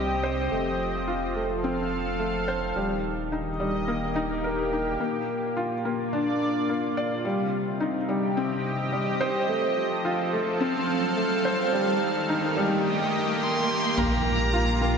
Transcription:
Already playing: sub bass C2, analog synth pad C3 C4 G4 D#5, felt piano G3 C4 D#4
0.23 felt piano C5
0.51 sub bass F1, analog synth pad F3, felt piano A3
1.08 felt piano F4
1.36 felt piano A3
1.53 analog synth pad A4 F5
1.64 felt piano C4
2.20 felt piano A3
2.48 felt piano C5
2.76 sub bass D#1, analog synth pad D#3, felt piano G3
3.32 felt piano D#4, analog synth pad D#5
3.37 analog synth pad G4
3.52 analog synth pad A#3
3.60 felt piano G3
3.88 felt piano A#3
4.16 felt piano D#4
4.44 felt piano A#4
4.72 felt piano D#4
5.00 sub bass A#1, analog synth pad A#2, felt piano A#3, riser
5.57 felt piano F4
5.85 felt piano A#3, analog synth pad F4
6.01 analog synth pad D5
6.13 felt piano D4
6.69 felt piano A#3
6.97 felt piano D5
7.11 sub bass C2
7.25 analog synth pad C3, felt piano G3
7.80 analog synth pad C4, felt piano D#4
8.06 felt piano G3, analog synth pad G4
8.26 analog synth pad D#5
8.37 felt piano C4
8.93 sub bass C2, felt piano G3
9.21 felt piano C5
9.49 analog synth pad F3, felt piano A3
9.74 analog synth pad A4
10.05 felt piano F4
10.33 felt piano A3
10.50 analog synth pad F5
10.61 felt piano C4
11.17 felt piano A3
11.45 felt piano C5
11.73 analog synth pad D#3, felt piano G3
12.10 analog synth pad A#3
12.29 felt piano D#4
12.57 felt piano G3
12.74 analog synth pad G4 D#5
13.41 violin C6
13.97 sub bass A#1, analog synth pad A#2, felt piano A#3, violin A#5, impact
14.25 analog synth pad F4
14.53 felt piano F4
14.81 felt piano A#3

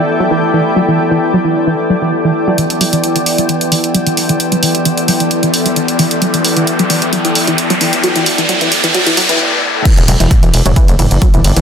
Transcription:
Already playing: synth drone E3 B3, ambient pad E4 A4 D5 G5
0.20 synth arpeggio sound F#3
0.31 synth arpeggio sound E3
0.54 synth arpeggio sound E3
0.76 synth arpeggio sound F#3
0.88 synth arpeggio sound E3
1.11 synth arpeggio sound E3
1.34 synth arpeggio sound F#3
1.44 synth arpeggio sound E3
1.67 synth arpeggio sound E3
1.90 synth arpeggio sound F#3
2.02 synth arpeggio sound E3
2.25 synth arpeggio sound E3
2.47 synth arpeggio sound F#3
2.58 synth arpeggio sound E3, synth drone E3 B3, closed hi-hat, riser
2.70 closed hi-hat
2.81 synth arpeggio sound F#3, open hi-hat
2.93 synth arpeggio sound E3, closed hi-hat
3.04 closed hi-hat
3.16 synth arpeggio sound E3, closed hi-hat
3.26 open hi-hat
3.38 synth arpeggio sound F#3, closed hi-hat
3.49 synth arpeggio sound E3, closed hi-hat
3.61 closed hi-hat
3.72 synth arpeggio sound E3, open hi-hat
3.84 closed hi-hat
3.94 synth arpeggio sound F#3, closed hi-hat
4.07 synth arpeggio sound E3, closed hi-hat
4.17 open hi-hat
4.29 synth arpeggio sound E3, closed hi-hat
4.40 closed hi-hat
4.52 synth arpeggio sound F#3, closed hi-hat
4.63 synth arpeggio sound E3, open hi-hat
4.75 closed hi-hat
4.85 synth arpeggio sound E3, closed hi-hat
4.97 closed hi-hat
5.08 synth arpeggio sound F#3, open hi-hat
5.20 synth arpeggio sound E3, closed hi-hat
5.31 closed hi-hat
5.43 synth arpeggio sound E3, closed hi-hat
5.54 open hi-hat
5.66 synth arpeggio sound F#3, closed hi-hat
5.76 synth arpeggio sound E3, closed hi-hat
5.88 closed hi-hat
5.99 synth arpeggio sound E3, open hi-hat
6.11 closed hi-hat
6.22 synth arpeggio sound F#3, closed hi-hat
6.34 synth arpeggio sound E3, closed hi-hat
6.45 open hi-hat
6.57 synth arpeggio sound E3, closed hi-hat
6.67 closed hi-hat
6.79 synth arpeggio sound F#3, closed hi-hat
6.90 synth arpeggio sound E3, open hi-hat
7.02 closed hi-hat
7.13 synth arpeggio sound F#3, closed hi-hat
7.25 synth arpeggio sound E3, closed hi-hat
7.35 open hi-hat
7.47 synth arpeggio sound E3, closed hi-hat
7.58 closed hi-hat
7.70 synth arpeggio sound F#3, closed hi-hat
7.81 synth arpeggio sound E3, open hi-hat
7.93 closed hi-hat
8.04 synth arpeggio sound F#3, closed hi-hat, noise sweep
8.16 synth arpeggio sound E3, closed hi-hat
8.26 open hi-hat
8.38 synth arpeggio sound E3, closed hi-hat
8.49 synth arpeggio sound F#3, closed hi-hat
8.61 synth arpeggio sound E3, closed hi-hat
8.72 open hi-hat
8.84 synth arpeggio sound E3, closed hi-hat
8.94 synth arpeggio sound F#3, closed hi-hat
9.07 synth arpeggio sound E3, closed hi-hat
9.17 synth arpeggio sound F#3, open hi-hat
9.29 synth arpeggio sound E3, closed hi-hat
9.85 synth arpeggio sound E3, ambient pad E4, kick, closed hi-hat, ride, crash
9.97 analog synth bass E1, ambient pad D5, closed hi-hat, mid tom
10.08 analog synth bass E1, synth arpeggio sound F#3, open hi-hat, ride
10.19 analog synth bass E1, synth arpeggio sound E3, ambient pad A4, closed hi-hat
10.31 ambient pad G5, kick, closed hi-hat, mid tom, ride
10.43 analog synth bass E1, synth arpeggio sound E3, closed hi-hat
10.54 analog synth bass E1, open hi-hat, ride
10.66 analog synth bass E1, synth arpeggio sound F#3, closed hi-hat, mid tom
10.76 synth arpeggio sound E3, kick, closed hi-hat, ride
10.88 analog synth bass F#1, closed hi-hat
10.99 analog synth bass F#1, synth arpeggio sound E3, mid tom, open hi-hat, ride
11.11 analog synth bass F#1, closed hi-hat
11.22 synth arpeggio sound F#3, kick, closed hi-hat, ride
11.34 analog synth bass G1, synth arpeggio sound E3, closed hi-hat, mid tom
11.44 analog synth bass G1, open hi-hat, ride
11.56 analog synth bass G1, synth arpeggio sound E3, closed hi-hat

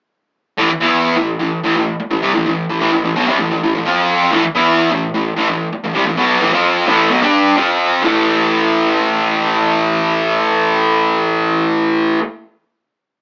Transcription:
0.57 distorted electric guitar A2 E3
0.70 muted distorted electric guitar stroke
0.80 distorted electric guitar E3 B3 E4
1.17 distorted electric guitar A2 E3
1.39 distorted electric guitar A2 E3
1.64 distorted electric guitar A2 E3
1.76 distorted electric guitar A2 E3
2.00 muted distorted electric guitar stroke
2.10 distorted electric guitar A2 E3
2.22 distorted electric guitar C3 G3
2.34 distorted electric guitar A2 E3
2.46 distorted electric guitar A2 E3
2.70 distorted electric guitar A2 E3
2.80 distorted electric guitar A2 E3
2.92 distorted electric guitar A2 E3
3.04 distorted electric guitar A2 E3
3.16 distorted electric guitar B2 F#3
3.27 distorted electric guitar C3 G3
3.39 distorted electric guitar A2 E3
3.51 distorted electric guitar A2 E3
3.63 distorted electric guitar A2 E3
3.75 distorted electric guitar A2 E3
3.86 distorted electric guitar F3 C4 F4
4.32 distorted electric guitar A2 E3
4.44 muted distorted electric guitar stroke
4.55 distorted electric guitar E3 B3 E4
4.92 distorted electric guitar A2 E3
5.14 distorted electric guitar A2 E3
5.37 distorted electric guitar A2 E3
5.49 distorted electric guitar A2 E3
5.73 muted distorted electric guitar stroke
5.84 distorted electric guitar A2 E3
5.95 distorted electric guitar C3 G3
6.06 distorted electric guitar A2 E3
6.17 distorted electric guitar B2 F#3 B3
6.41 distorted electric guitar A2 E3
6.52 distorted electric guitar F3 C4 F4
6.87 distorted electric guitar A2 E3 A3
7.10 distorted electric guitar B2 F#3
7.22 distorted electric guitar G3 D4 G4
7.56 distorted electric guitar F3 C4 F4
8.03 distorted electric guitar A2 E3 A3

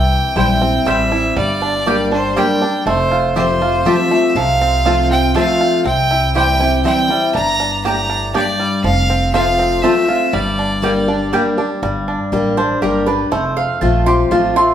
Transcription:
Already playing: upright bass C2, steel-string acoustic guitar C3, five-string banjo E3, fiddle G5
0.36 upright bass A#1, steel-string acoustic guitar E3 G3 C4 E4, mandolin C4 E4 C5 G5, five-string banjo E4, fiddle G5
0.61 five-string banjo C4, steel-string acoustic guitar C4 E4
0.85 upright bass A1, steel-string acoustic guitar E3 G3 C4 E4, five-string banjo G3, mandolin C4 E4 C5 G5, fiddle E5
1.11 steel-string acoustic guitar C4 E4, five-string banjo E4
1.36 upright bass G1, steel-string acoustic guitar G2, five-string banjo G3, fiddle D5
1.62 five-string banjo D4
1.86 steel-string acoustic guitar G3 A#3 D4 G4, five-string banjo G3, mandolin A#3 G4 D5 G5
2.11 five-string banjo D4, steel-string acoustic guitar D4 G4, fiddle C5
2.36 five-string banjo G3, steel-string acoustic guitar G3 A#3 D4 G4, mandolin A#3 G4 D5 G5, fiddle G5
2.62 five-string banjo D4, steel-string acoustic guitar D4 G4
2.86 upright bass F1, steel-string acoustic guitar F2, five-string banjo A3, fiddle C5
3.11 five-string banjo F4
3.36 steel-string acoustic guitar F3 A3 C4 F4, mandolin C4 F4 C5 A5, five-string banjo G4, fiddle C5
3.61 steel-string acoustic guitar C4 F4, five-string banjo F4
3.85 steel-string acoustic guitar F3 A3 C4 F4, mandolin C4 F4 C5 A5, five-string banjo G4, fiddle E5
4.11 five-string banjo A3, steel-string acoustic guitar C4 F4
4.29 fiddle E5
4.35 upright bass C2, steel-string acoustic guitar C3, five-string banjo F3, fiddle F5
4.61 five-string banjo C4
4.85 steel-string acoustic guitar F3 A3 C4 F4, mandolin C4 F4 C5 A5, five-string banjo F4
5.10 five-string banjo C4, steel-string acoustic guitar C4 F4, fiddle G5
5.35 steel-string acoustic guitar F3 A3 C4 F4, five-string banjo A3, mandolin C4 F4 C5 A5, fiddle F5
5.61 five-string banjo F4
5.85 upright bass C2, steel-string acoustic guitar C3, five-string banjo C4, fiddle G5
6.11 five-string banjo E4
6.35 steel-string acoustic guitar E3 G3 C4 E4, mandolin C4 E4 C5 G5, five-string banjo G4, fiddle G5
6.60 steel-string acoustic guitar C4 E4, five-string banjo E4
6.84 steel-string acoustic guitar E3 G3 C4 E4, mandolin C4 E4 C5 G5, five-string banjo C4, fiddle G5
7.09 five-string banjo G3, steel-string acoustic guitar C4 E4
7.34 upright bass G1, steel-string acoustic guitar G2, five-string banjo D4, fiddle A#5
7.60 five-string banjo D4
7.85 steel-string acoustic guitar A2, mandolin A#3 G4 D5 G5, five-string banjo G4, fiddle A#5
8.10 five-string banjo D4
8.34 steel-string acoustic guitar G2, mandolin A#3 G4 D5 G5, five-string banjo D4, fiddle D5
8.60 five-string banjo G3
8.84 upright bass F1, steel-string acoustic guitar F2, five-string banjo F3, fiddle F5
9.10 five-string banjo C4
9.33 steel-string acoustic guitar F3 A3 C4 F4, mandolin C4 F4 C5 A5, five-string banjo F4, fiddle F5
9.59 five-string banjo C4
9.82 steel-string acoustic guitar F3 A3 C4 F4, five-string banjo A3, mandolin C4 F4 C5 A5, fiddle E5
10.08 steel-string acoustic guitar C4 F4, five-string banjo F4
10.33 upright bass G1, steel-string acoustic guitar G2, five-string banjo G3, fiddle D5
10.59 five-string banjo D4
10.82 steel-string acoustic guitar G3 A#3 D4 G4, five-string banjo G3, mandolin A#3 G4 D5 G5
11.08 five-string banjo D4, steel-string acoustic guitar D4 G4
11.33 steel-string acoustic guitar G3 A#3 D4 G4, five-string banjo G3, mandolin A#3 G4 D5 G5
11.57 five-string banjo D4, steel-string acoustic guitar D4 G4
11.82 upright bass G1, steel-string acoustic guitar G2, five-string banjo G3
12.08 five-string banjo D4
12.32 upright bass A1, steel-string acoustic guitar G3 A#3 D4 G4, five-string banjo G3
12.57 five-string banjo D4, steel-string acoustic guitar D4 G4, mandolin C5
12.82 upright bass G1, steel-string acoustic guitar G3 A#3 D4 G4, five-string banjo G4, mandolin A#4
13.06 five-string banjo D4, steel-string acoustic guitar D4 G4, mandolin B4
13.32 upright bass F1, steel-string acoustic guitar F2, five-string banjo A3, mandolin C5
13.57 mandolin F5
13.81 upright bass A#1, steel-string acoustic guitar F3 A3 C4 F4, five-string banjo F4, mandolin A5
14.06 steel-string acoustic guitar C4 F4, five-string banjo G4, mandolin C6
14.31 upright bass A1, steel-string acoustic guitar F3 A3 C4 F4, five-string banjo F4, mandolin A5
14.56 five-string banjo A3, steel-string acoustic guitar C4 F4, mandolin C6

